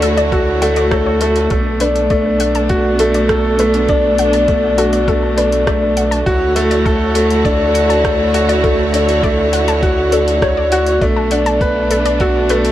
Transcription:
Already playing: D2 D3 A3 D4 E4 F#4 C#5
0.02 A4, closed hi-hat
0.17 D5, closed hi-hat
0.32 F#4 A4, kick, closed hi-hat
0.62 A3 F#5, closed hi-hat
0.76 D5, closed hi-hat
0.91 A4 C#5, kick, cross-stick, closed hi-hat
1.06 C#5
1.21 A3 A4, closed hi-hat
1.36 closed hi-hat
1.50 B1 A3 B3 D4 A4, kick, closed hi-hat
1.80 D4 B4, closed hi-hat
1.96 closed hi-hat
2.10 A3 D5, kick, closed hi-hat
2.40 F#5, closed hi-hat
2.55 A5, closed hi-hat
2.69 F#4, kick, closed hi-hat
2.99 A3 A4, closed hi-hat
3.14 D5, closed hi-hat
3.29 A4, kick, cross-stick, closed hi-hat
3.59 A3 B4, closed hi-hat
3.74 closed hi-hat
3.89 D4 D5, kick, closed hi-hat
4.18 F#5, closed hi-hat
4.33 A5, closed hi-hat
4.48 A3, kick, closed hi-hat
4.78 F#4 A4, closed hi-hat
4.93 D5, closed hi-hat
5.08 A3 A4, kick, closed hi-hat
5.37 D4 B4, closed hi-hat
5.52 closed hi-hat
5.67 A3 D5, kick, cross-stick, closed hi-hat
5.97 F#5, closed hi-hat
6.11 A5, closed hi-hat
6.26 D2 D3 E4 F#4 C#5, kick, closed hi-hat
6.56 A3 A4, closed hi-hat
6.71 D5, closed hi-hat
6.86 A4, kick, closed hi-hat
7.15 A3 C#5, closed hi-hat
7.30 closed hi-hat
7.45 D4 D5, kick, closed hi-hat
7.75 F#5, closed hi-hat
7.90 A5, closed hi-hat
8.04 A3, kick, cross-stick, closed hi-hat
8.34 F#4 A4, closed hi-hat
8.49 D5, closed hi-hat
8.64 A3 A4, kick, closed hi-hat
8.93 D4 C#5, closed hi-hat
9.09 closed hi-hat
9.23 A3 D5, kick, closed hi-hat
9.53 F#5, closed hi-hat
9.68 A5, closed hi-hat
9.83 F#4, kick, closed hi-hat
10.12 D4 A4, closed hi-hat
10.28 closed hi-hat
10.42 C#5, kick, cross-stick, closed hi-hat
10.57 D5
10.72 F#4 F#5, closed hi-hat
10.87 closed hi-hat
11.01 B1 A3 B3 D4 D5, kick, closed hi-hat
11.16 A5
11.31 D4 F#5, closed hi-hat
11.46 A5, closed hi-hat
11.61 B4, kick, closed hi-hat
11.91 A4, closed hi-hat
12.05 D5, closed hi-hat
12.20 F#4 A4, kick, closed hi-hat
12.49 A3 B4, closed hi-hat
12.65 closed hi-hat

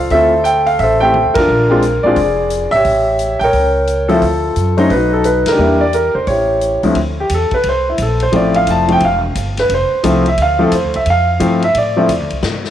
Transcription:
Already playing: A4 C5 F5
0.10 D2 A3 C4 E4 F4 C5 E5, kick, open hi-hat
0.15 A4
0.44 G5, closed hi-hat
0.66 F5, open hi-hat
0.79 A1 E5, kick, open hi-hat
0.83 A4 C5
1.00 A3 C4 E4 G4 E5 G5
1.05 C5
1.14 high tom
1.25 D2
1.34 F2 D4 A#4, kick, ride
1.38 F4
1.48 A#1
1.70 G#3 C4 D4 F4
1.82 closed hi-hat
2.03 A1 G#3 C4 D4 F4 G#4 D5
2.16 F1, kick, open hi-hat
2.50 closed hi-hat
2.71 G#1 E5, open hi-hat
2.76 G4 C#5
2.85 A1, kick, open hi-hat
3.19 closed hi-hat
3.39 A#1 G5, open hi-hat
3.44 A#4 C#5
3.53 C#2, kick, open hi-hat
3.87 closed hi-hat
4.08 F3 A3 C4 E4 A4, open hi-hat
4.13 F4
4.22 D2, kick, open hi-hat
4.56 F#2, closed hi-hat
4.77 F#3 A3 C#4 D#4 C5, open hi-hat
4.90 B1 B4, kick, open hi-hat
4.94 D#4 F#4
5.13 A4
5.24 B4, closed hi-hat
5.46 B2 A#4, snare, ride
5.51 D4 G4
5.58 E2 G3 A#3 D4 E4
5.81 D5
5.93 A#4, closed hi-hat
6.15 E2 C5
6.27 A1 E4 G4 C#5, kick, open hi-hat
6.61 closed hi-hat
6.83 C#2 D2 F3 A3 C4 E4, open hi-hat
6.95 D2, kick, ride
7.20 G4
7.29 E2, kick, hi-hat pedal, ride
7.34 A4
7.51 B4, muted upright bass stroke, kick, ride
7.63 C2, kick, ride
7.69 C5
7.89 E4
7.98 A#1, kick, hi-hat pedal, ride
8.02 A4
8.20 C5, ride
8.32 A1 F3 A3 C4 E4 D5, kick, ride
8.54 F5, ride
8.67 F1 A5, kick, hi-hat pedal, ride
8.88 F3 A3 C4 E4 G5, ride
9.00 E1, kick, ride
9.05 F5
9.35 G1, kick, hi-hat pedal, ride
9.57 B4, snare, ride
9.69 F1, kick, ride
9.74 C5
9.92 muted upright bass stroke
10.03 C2 F3 A3 C4 E4, kick, hi-hat pedal, ride
10.26 E5, ride
10.38 D2, kick, ride
10.42 F5
10.59 F3 A3 C4 E4 A4
10.72 E2 C5, kick, hi-hat pedal, ride
10.84 D2
10.94 C2 E5, ride
11.06 F2, kick, ride
11.10 F5
11.40 G2 F3 A3 C4 E4, kick, hi-hat pedal, ride
11.62 E5, ride
11.74 A2 D5, kick, ride
11.97 F3 A3 C4 E4
12.09 E2, kick, hi-hat pedal, ride
12.20 D2
12.30 C2, ride
12.43 G2, snare
12.64 snare

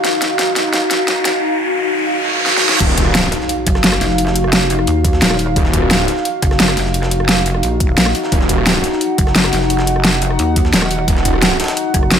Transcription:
Already playing: D#4 F#4 F5, riser
0.04 snare, closed hi-hat
0.22 snare, closed hi-hat
0.39 snare, closed hi-hat
0.56 snare, closed hi-hat
0.73 snare, closed hi-hat
0.91 snare, closed hi-hat
1.08 snare, closed hi-hat
1.25 snare, closed hi-hat
2.11 reverse cymbal
2.46 snare
2.57 snare
2.69 snare
2.80 D#1 D#4 F#4 F5, kick, closed hi-hat, crash, impact
2.89 snare
2.98 D#1, kick, closed hi-hat
3.06 cross-stick
3.15 snare, closed hi-hat
3.32 snare, closed hi-hat, open hi-hat
3.41 snare
3.49 closed hi-hat
3.67 F#1, kick, closed hi-hat
3.75 cross-stick, snare
3.84 snare, closed hi-hat
3.92 cross-stick
4.01 F1, snare, closed hi-hat, open hi-hat
4.10 snare
4.18 closed hi-hat
4.27 snare
4.35 closed hi-hat
4.44 cross-stick
4.53 snare, closed hi-hat, open hi-hat
4.61 closed hi-hat
4.70 closed hi-hat, open hi-hat
4.79 cross-stick
4.87 D#2, closed hi-hat
5.04 kick, closed hi-hat
5.13 snare
5.22 D#1, snare, closed hi-hat
5.30 cross-stick, snare
5.39 closed hi-hat, open hi-hat
5.56 D#1, kick, closed hi-hat
5.65 snare
5.73 D#1, kick, closed hi-hat
5.82 cross-stick
5.91 snare, closed hi-hat
6.08 snare, closed hi-hat, open hi-hat
6.17 snare
6.25 closed hi-hat
6.42 F#1, kick, closed hi-hat
6.51 cross-stick, snare
6.60 snare, closed hi-hat
6.68 cross-stick
6.77 F1, snare, closed hi-hat, open hi-hat
6.86 snare
6.94 closed hi-hat
7.03 snare
7.11 closed hi-hat
7.20 cross-stick
7.29 snare, closed hi-hat, open hi-hat
7.37 closed hi-hat
7.46 closed hi-hat, open hi-hat
7.54 cross-stick
7.63 A#1, closed hi-hat
7.80 kick, closed hi-hat
7.98 A#1, snare, closed hi-hat
8.06 cross-stick, snare
8.15 closed hi-hat, open hi-hat
8.23 snare
8.32 D#1 F#5, kick, closed hi-hat
8.41 snare
8.49 D#1, kick, closed hi-hat
8.58 cross-stick
8.67 snare, closed hi-hat
8.84 snare, closed hi-hat, open hi-hat
8.92 snare
9.01 closed hi-hat
9.18 F#1, kick, closed hi-hat
9.27 cross-stick, snare
9.35 snare, closed hi-hat
9.44 cross-stick
9.53 F1, snare, closed hi-hat, open hi-hat
9.61 snare
9.70 closed hi-hat
9.79 snare
9.87 closed hi-hat
9.96 cross-stick
10.04 snare, closed hi-hat, open hi-hat
10.13 closed hi-hat
10.22 closed hi-hat, open hi-hat
10.30 cross-stick
10.39 D#2, closed hi-hat
10.56 kick, closed hi-hat
10.65 snare
10.73 D#1, snare, closed hi-hat
10.82 cross-stick, snare
10.91 closed hi-hat, open hi-hat
11.08 D#1, kick, closed hi-hat
11.17 snare
11.25 D#1, kick, closed hi-hat
11.34 cross-stick
11.42 snare, closed hi-hat
11.60 snare, closed hi-hat, open hi-hat
11.64 snare, closed hi-hat
11.68 snare, closed hi-hat
11.77 closed hi-hat
11.94 F#1, kick, closed hi-hat
12.03 cross-stick
12.11 snare, closed hi-hat

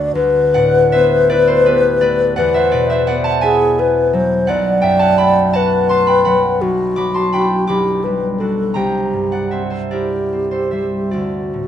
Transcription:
Already playing: D2 A3 D4 F#4 A4 B4 D5 F#5
0.15 D2 B4
0.54 A2 D5 F#5
0.92 B3 C5 E5
1.30 E4 B4 D5
1.47 A4 C5
1.66 B3 G4 B4
2.01 A3 B4 D5
2.36 E2 B4 D5 F#5
2.54 C5 E5
2.72 B2 B4 D5
2.90 C5 E5
3.07 B3 D5 F#5
3.24 F#5 A5
3.41 E4 G#4 E5 G#5
3.79 B3 B4
4.13 F#3 C5
4.47 B1 D5 F#5
4.81 F#2 E5 G5
4.99 F#5 A5
5.18 A3 G5 B5
5.53 F#4 B4 F#5 A5
5.89 A3 A5 C6
6.07 G5 B5
6.25 F#3 F#5 B5
6.61 B1 F#4
6.96 F#3 B5 D6
7.14 A5 C6
7.33 D4 E4 G5 B5
7.67 B1 G4 B5 D6
8.04 G3 B4
8.40 D4 F#4 A4
8.74 C2 G4 G5 A#5
9.13 G2
9.32 D5 F#5
9.51 C4 C5 E5
9.70 A4 C5
9.91 E4 G4 A#4 D5
10.33 C4
10.51 A4 C5
10.71 G3 C5 E5
11.11 D2 F#4 A4 D5
11.54 A2

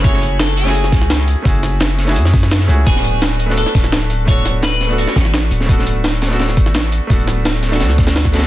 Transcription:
Already playing: F#1 C#4 E4 F#4 G#4
0.00 A3 C#4 E4, closed hi-hat
0.04 F#4 G#4 C#5, kick, closed hi-hat
0.13 snare
0.22 closed hi-hat
0.39 A4, snare, closed hi-hat
0.57 G#4, closed hi-hat
0.63 A3 C#4 E4, snare
0.68 F#4 G#4
0.75 closed hi-hat
0.84 snare
0.92 C#2, kick, snare, closed hi-hat
1.01 snare
1.10 snare, closed hi-hat
1.28 F#4, closed hi-hat
1.42 F#1 A3 C#4 E4, kick, closed hi-hat
1.47 F#4 G#4
1.54 closed hi-hat
1.63 snare, closed hi-hat
1.80 snare, closed hi-hat
1.90 closed hi-hat
1.98 snare, closed hi-hat
2.05 A3 C#4 E4, snare, closed hi-hat
2.09 F#4 G#4
2.16 F#2, closed hi-hat
2.25 snare
2.34 kick, closed hi-hat, open hi-hat
2.43 snare
2.51 snare, closed hi-hat
2.60 snare
2.67 C#2 A3 C#4 E4 F#4 G#4, closed hi-hat
2.84 D1 A3 B3 D4 G#4, kick, closed hi-hat
2.88 F#4 B4
2.96 snare
3.04 closed hi-hat
3.22 snare, closed hi-hat
3.39 closed hi-hat
3.46 A3 B3 D4
3.50 F#4 A4, snare
3.57 A4, closed hi-hat
3.66 snare
3.75 D1, kick, snare, closed hi-hat
3.84 snare
3.92 snare, closed hi-hat
4.10 closed hi-hat
4.25 A3 B3 D4 C#5, kick, closed hi-hat
4.30 F#4 A4
4.38 closed hi-hat
4.45 snare, closed hi-hat
4.63 B4, snare, closed hi-hat
4.71 closed hi-hat
4.81 snare, closed hi-hat
4.87 A3 B3 D4, closed hi-hat
4.91 F#4 A4
4.98 F#4, closed hi-hat
5.07 snare
5.16 A1, kick, snare, closed hi-hat
5.25 snare
5.34 snare, closed hi-hat
5.51 D1, closed hi-hat
5.60 snare
5.66 A3 B3 D4, kick, closed hi-hat
5.70 F#4 A4
5.79 snare
5.86 closed hi-hat
6.04 snare, closed hi-hat
6.22 snare, closed hi-hat
6.28 A3 B3 D4, snare
6.33 F#4 A4
6.39 snare, closed hi-hat
6.49 snare
6.57 A1, kick, closed hi-hat
6.66 snare
6.74 snare, closed hi-hat
6.92 closed hi-hat
7.07 D1 A3 B3 D4, kick, closed hi-hat
7.12 F#4 A4
7.19 closed hi-hat
7.27 snare, closed hi-hat
7.45 snare, closed hi-hat
7.54 closed hi-hat
7.63 snare, closed hi-hat
7.69 A3 B3 D4, snare, closed hi-hat
7.74 F#4 A4
7.80 D2, snare, closed hi-hat
7.90 snare
7.98 kick, snare, closed hi-hat
8.07 snare, closed hi-hat
8.16 snare, closed hi-hat
8.25 kick, snare, closed hi-hat
8.32 A3 B3 D4 F#4 A4, snare, closed hi-hat
8.38 snare, closed hi-hat
8.43 A1, snare, closed hi-hat

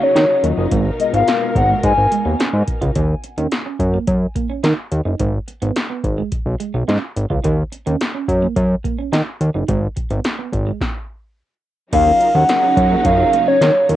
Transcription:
Already playing: C#3 F#3 D#4
0.01 C#4 C#5
0.15 D#3 D#4, snare, closed hi-hat
0.29 F4 A#4, muted clean electric guitar stroke
0.43 D#2 F#3 D#4 F4 D#5, closed hi-hat
0.57 F#1 D#4
0.71 G#1 B2 G#3 A#4, kick, closed hi-hat
0.99 G#3 B3 F4 A#4 D#5, muted clean electric guitar stroke, closed hi-hat
1.13 G#1 B3 F5, closed hi-hat
1.28 snare, closed hi-hat
1.41 B3
1.55 G#1 F#5, muted clean electric guitar stroke, kick, closed hi-hat
1.69 G#3
1.83 G#2 G#5, muted clean electric guitar stroke, kick, closed hi-hat
1.98 G#1
2.11 G#3, closed hi-hat
2.25 D#2 B3
2.39 C#4, snare, closed hi-hat
2.53 G#2, muted clean electric guitar stroke
2.68 kick, closed hi-hat
2.81 C#2 F4, kick, closed hi-hat
2.95 D#2 D#4, kick, closed hi-hat
3.24 muted clean electric guitar stroke, closed hi-hat
3.38 D#2 C#4, closed hi-hat
3.51 snare, closed hi-hat
3.66 C#4
3.79 F#2, muted clean electric guitar stroke, kick, closed hi-hat
3.94 A#3
4.07 F#2, muted clean electric guitar stroke, kick, closed hi-hat
4.36 A#3, kick, closed hi-hat
4.50 C#4
4.63 D#3 D#4, snare, closed hi-hat
4.77 muted clean electric guitar stroke
4.92 D#2, closed hi-hat
5.05 F#1 D#4
5.20 G#1 G#3, kick, closed hi-hat
5.48 muted clean electric guitar stroke, closed hi-hat
5.62 G#1 B3, closed hi-hat
5.76 snare, closed hi-hat
5.90 B3
6.04 G#1, muted clean electric guitar stroke, kick, closed hi-hat
6.18 G#3
6.32 muted clean electric guitar stroke, kick, closed hi-hat
6.46 B1
6.60 G#3, closed hi-hat
6.74 B1 B3
6.88 G#2 C#4, snare, closed hi-hat
7.02 muted clean electric guitar stroke
7.16 G#1, closed hi-hat
7.30 C#2 F4, kick
7.44 D#2 D#4, kick, closed hi-hat
7.72 muted clean electric guitar stroke, closed hi-hat
7.86 D#2 C#4, closed hi-hat
8.01 snare, closed hi-hat
8.14 C#4
8.28 F#2, muted clean electric guitar stroke, kick, closed hi-hat
8.42 A#3
8.56 F#2, muted clean electric guitar stroke, kick, closed hi-hat
8.84 A#3, kick, closed hi-hat
8.98 C#4
9.12 D#3 D#4, snare, closed hi-hat
9.27 muted clean electric guitar stroke
9.41 D#2, closed hi-hat
9.54 F#1 D#4
9.68 G#1 G#3, kick, closed hi-hat
9.96 muted clean electric guitar stroke, kick, closed hi-hat
10.10 G#1 B3, closed hi-hat
10.24 snare, closed hi-hat
10.38 B3
10.52 G#1, muted clean electric guitar stroke, kick, closed hi-hat
10.67 G#3
10.81 kick, snare
11.92 D#2 C#3 F#3 D#4 F5, kick, closed hi-hat, crash
12.06 F#3 C#4 D#4 F4 A#4
12.21 muted clean electric guitar stroke, closed hi-hat
12.35 D#2 C#4 F#5
12.49 F#3 C#4 D#4 F4 A#4, snare, closed hi-hat
12.63 C#4
12.77 F#2 F#5, muted clean electric guitar stroke, kick, closed hi-hat
12.90 F#3 A#3 C#4 D#4 F4 A#4
13.05 F#2 F5, muted clean electric guitar stroke, kick, closed hi-hat
13.33 A#3, closed hi-hat
13.47 C#4 C#5
13.61 D#3 D#4, snare, closed hi-hat
13.74 F4 A#4, muted clean electric guitar stroke
13.89 D#2 F#3 C#4 D#4 F4 C#5, closed hi-hat

